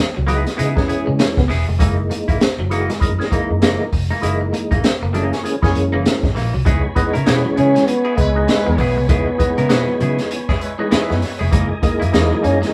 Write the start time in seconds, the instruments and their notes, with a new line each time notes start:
0.15 fingered electric bass C#2, clean electric guitar F#3, muted clean electric guitar stroke
0.27 tonewheel organ E3 G#3 B3 D#4, clean electric guitar F#3 B3 E4 G#4, closed hi-hat
0.45 muted clean electric guitar stroke, snare, closed hi-hat
0.57 fingered electric bass C#3, tonewheel organ E3 G#3 B3 D#4, clean electric guitar B3 E4 G#4, closed hi-hat
0.76 tonewheel organ D#3 G#3 B3 C#4, clean electric guitar G#3, muted clean electric guitar stroke, kick, snare
0.82 tonewheel organ E3
0.88 clean electric guitar B3 E4 G#4, muted fingered electric bass stroke, muted clean electric guitar stroke, closed hi-hat
1.06 fingered electric bass C#3, clean electric guitar G#3, muted clean electric guitar stroke
1.19 muted clean electric guitar stroke, snare, closed hi-hat
1.37 fingered electric bass C#2, clean electric guitar B3, kick, snare
1.48 fingered electric bass E1, clean electric guitar B3 E4 G#4, muted clean electric guitar stroke, snare, open hi-hat
1.67 fingered electric bass F1, clean electric guitar G#3, muted clean electric guitar stroke
1.79 fingered electric bass F#1, tonewheel organ E3 G#3 A3 D#4, clean electric guitar E3 G#3 A#3 D#4, kick, closed hi-hat
1.86 tonewheel organ A#3
1.98 muted clean electric guitar stroke
2.10 clean electric guitar A#3, muted clean electric guitar stroke, closed hi-hat
2.28 fingered electric bass G#1, clean electric guitar E3 A#3 E4, muted clean electric guitar stroke, kick, closed hi-hat
2.40 muted fingered electric bass stroke, snare, closed hi-hat
2.58 fingered electric bass F#1, clean electric guitar F#3, muted clean electric guitar stroke
2.70 tonewheel organ E3 G#3 A#3 F#4, clean electric guitar E3 A#3 D#4, muted clean electric guitar stroke, closed hi-hat
2.90 clean electric guitar G#3, muted clean electric guitar stroke, snare, closed hi-hat
3.00 fingered electric bass F#2, tonewheel organ E3 G#3 A#3 D#4, muted clean electric guitar stroke, kick, closed hi-hat
3.18 tonewheel organ E3 G#3 A#3 C#4, snare
3.26 tonewheel organ D#4
3.32 clean electric guitar E3 A#3 D#4, muted fingered electric bass stroke, kick, closed hi-hat
3.50 fingered electric bass F#2, muted clean electric guitar stroke
3.62 fingered electric bass F#1, clean electric guitar E3 A#3 D#4, snare, closed hi-hat
3.81 clean electric guitar A#3
3.92 fingered electric bass F1, muted clean electric guitar stroke, kick, open hi-hat
4.11 clean electric guitar E3 G#3 A#3 D#4
4.21 fingered electric bass F#1, tonewheel organ E3 G#3 A#3 D#4, clean electric guitar E3 A#3 E4, closed hi-hat
4.41 muted clean electric guitar stroke
4.53 clean electric guitar A#3, muted clean electric guitar stroke, closed hi-hat
4.71 fingered electric bass G#1, clean electric guitar E3 G#3 A#3 D#4, kick, closed hi-hat
4.84 muted clean electric guitar stroke, muted fingered electric bass stroke, snare, closed hi-hat
5.01 fingered electric bass F#1, clean electric guitar A#3, muted clean electric guitar stroke
5.13 tonewheel organ E3 G#3 A#3 C#4, clean electric guitar E3 F#3 A#3 D#4, closed hi-hat
5.32 horn section A#3 G#4 C#5, muted clean electric guitar stroke, snare, closed hi-hat
5.43 tonewheel organ E3 G#3 A#3 C#4, muted clean electric guitar stroke, closed hi-hat
5.62 fingered electric bass F#2, tonewheel organ E3 G#3 A#3 C#4, clean electric guitar E3, horn section A#3 G#4 C#5, muted clean electric guitar stroke, kick, snare
5.75 fingered electric bass F#2, muted clean electric guitar stroke, closed hi-hat
5.93 fingered electric bass F#1, clean electric guitar E3 A#3 D#4
6.05 muted clean electric guitar stroke, snare, closed hi-hat
6.23 fingered electric bass G#1, clean electric guitar G#3, kick, snare
6.35 fingered electric bass A#1, clean electric guitar E3 A#3 D#4, muted clean electric guitar stroke, snare, open hi-hat
6.54 fingered electric bass C2, clean electric guitar F#3, muted clean electric guitar stroke
6.65 fingered electric bass C#2, tonewheel organ E3 G#3 B3 D#4 C#5 G#5 B5, clean electric guitar G#3 B3 E4 G#4, kick, closed hi-hat
6.84 muted clean electric guitar stroke
6.95 tonewheel organ E3 G#3 B3 D#4, clean electric guitar B3, muted clean electric guitar stroke, muted fingered electric bass stroke, kick, closed hi-hat
7.13 fingered electric bass C#3, clean electric guitar B3 E4 A#4, muted clean electric guitar stroke, closed hi-hat
7.26 fingered electric bass B2, tonewheel organ E3 G#3 B3 C#4, clean electric guitar B3 E4 G#4, snare, closed hi-hat
7.44 clean electric guitar F#3, muted clean electric guitar stroke
7.56 fingered electric bass C#3, clean electric guitar B3 E4 G#4, trombone C#4, muted clean electric guitar stroke, closed hi-hat
7.74 clean electric guitar G#3, muted clean electric guitar stroke, snare, closed hi-hat
7.87 trombone B3, muted clean electric guitar stroke, closed hi-hat
8.05 clean electric guitar B3 E4 G#4
8.17 fingered electric bass C#2, horn section G#3 E4 B4, trombone G#3, clean electric guitar B3, muted clean electric guitar stroke, kick, closed hi-hat
8.35 tonewheel organ D#3 G#3 B3 D#4, muted clean electric guitar stroke
8.41 tonewheel organ E3
8.48 horn section G#3 E4 B4, muted clean electric guitar stroke, snare, closed hi-hat
8.66 fingered electric bass E2, clean electric guitar B3, muted clean electric guitar stroke
8.78 fingered electric bass B1, clean electric guitar B3 E4 G#4, trombone B3, muted clean electric guitar stroke, kick, open hi-hat
8.96 fingered electric bass C2, clean electric guitar G#3, muted clean electric guitar stroke
9.08 fingered electric bass C#2, tonewheel organ E3 G#3 B3 D#4, clean electric guitar B3 E4 G#4, trombone B3, kick, closed hi-hat
9.28 muted clean electric guitar stroke
9.38 tonewheel organ E3 G#3 B3 D#4, clean electric guitar B3, muted clean electric guitar stroke, muted fingered electric bass stroke, kick, closed hi-hat
9.57 fingered electric bass C#3, clean electric guitar G#3 B3 E4 A#4, closed hi-hat
9.68 fingered electric bass B2, tonewheel organ D#3 G#3 B3 D#4, clean electric guitar B3 E4 G#4, muted clean electric guitar stroke, snare, closed hi-hat
9.75 tonewheel organ E3
9.88 clean electric guitar F#3, muted clean electric guitar stroke
10.00 fingered electric bass C#3, clean electric guitar F#3 B3 E4 G#4, closed hi-hat
10.19 muted clean electric guitar stroke, snare, closed hi-hat
10.31 muted clean electric guitar stroke, closed hi-hat
10.49 clean electric guitar G#3 B3 E4 G#4, kick, snare
10.61 horn section G#3 E4 B4, muted clean electric guitar stroke, closed hi-hat
10.78 tonewheel organ E3 G#3 B3 D#4, clean electric guitar G#3, muted clean electric guitar stroke
10.91 horn section G#3 E4 B4, clean electric guitar B3 E4 G#4, muted fingered electric bass stroke, snare, closed hi-hat
11.10 fingered electric bass F#2, clean electric guitar B3, snare
11.21 muted clean electric guitar stroke, snare, open hi-hat
11.39 fingered electric bass F1, clean electric guitar G#3 B3 E4 G#4
11.51 fingered electric bass F#1, clean electric guitar E3 G#3 A#3 D#4, tonewheel organ E3 G#3 A#3 D#4 D#5 A#5, kick, closed hi-hat
11.69 muted clean electric guitar stroke
11.82 tonewheel organ E3 G#3 A#3 D#4, clean electric guitar A#3, muted clean electric guitar stroke, muted fingered electric bass stroke, kick, closed hi-hat
12.00 fingered electric bass F#2, clean electric guitar E3 A#3 E4, muted clean electric guitar stroke, closed hi-hat
12.12 fingered electric bass E2, clean electric guitar E3 A#3 D#4, tonewheel organ E3 G#3 A#3 D#4, snare, closed hi-hat
12.30 clean electric guitar F#3, muted clean electric guitar stroke
12.42 fingered electric bass F#2, clean electric guitar E3 A#3 D#4, trombone C#4, muted clean electric guitar stroke, closed hi-hat
12.61 clean electric guitar G#3, muted clean electric guitar stroke, snare, closed hi-hat